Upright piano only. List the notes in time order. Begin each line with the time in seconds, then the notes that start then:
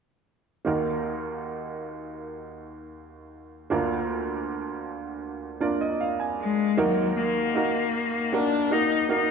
0.65 D#2 D#3 A#3 D#4 F#4 A#4
3.70 D2 D3 A#3 D4 F4 A#4
5.60 A#3 D4 F4 A#4 D5
5.81 D#5
6.01 F5
6.20 G#5
6.77 D#2 D#3 A#3 D#4 F#4 A#4
7.55 A#3 D#4 F#4 A#4
8.32 A#3 F#4 A#4
8.71 A#3 D#4 F#4 A#4
9.09 A#3 D#4 F#4 A#4